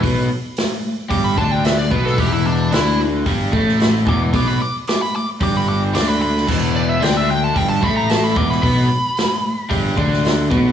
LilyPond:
<<
  \new Staff \with { instrumentName = "Lead electric guitar" } { \time 4/4 \key e \minor \tempo 4 = 112 r2 d'''16 b''16 a''16 g''16 e''16 d''16 b'16 a'16 | g'16 e'16 d'8 e'8 r2 d'''16 r16 | d'''16 b''16 d'''16 r16 d'''16 b''16 d'''16 r16 d'''16 b''16 d'''16 r16 d'''16 b''16 b''8 | r8 d''16 e''16 g''16 e''16 g''16 a''16 g''16 a''16 b''16 ais''16 a''16 b''16 d'''16 b''16 |
b''2. r4 | }
  \new Staff \with { instrumentName = "Overdriven electric guitar" } { \clef bass \time 4/4 \key e \minor <b, b>8 r4. <g, g>8 <d d'>4 <b, b>8 | <e, e>4 <d d'>4 <g, g>8 <a, a>4 <e, e>8 | <b, b>8 r4. <g, g>4 <d d'>4 | <e, e>4 <d d'>4 <g, g>8 <a, a>4 <e, e>8 |
<b, b>8 r4. <g, g>8 <d d'>4 <b, b>8 | }
  \new Staff \with { instrumentName = "Fingered electric bass" } { \clef bass \time 4/4 \key e \minor b,,8 r4. g,,8 d,4 b,,8 | e,,4 d,4 g,,8 a,,4 e,,8 | b,,8 r4. g,,4 d,4 | e,,4 d,4 g,,8 a,,4 e,,8 |
b,,8 r4. g,,8 d,4 b,,8 | }
  \new DrumStaff \with { instrumentName = "Drums" } \drummode { \time 4/4 <hho bd>4 <hho sn>4 <hho bd>8 bd8 <hho sn>8 bd16 sn16 | <hho bd>4 <hho sn>4 <hho bd>8 bd16 sn16 <hho sn>8 bd8 | <hho bd>4 <hho sn>4 <hho bd>4 <hho sn>8. sn16 | <cymc bd>4 <hho sn>4 <hho bd>8 bd8 <hho sn>8 bd16 sn16 |
<hho bd>4 <hho sn>4 <hho bd>8 bd16 sn16 <hho sn>8 bd8 | }
>>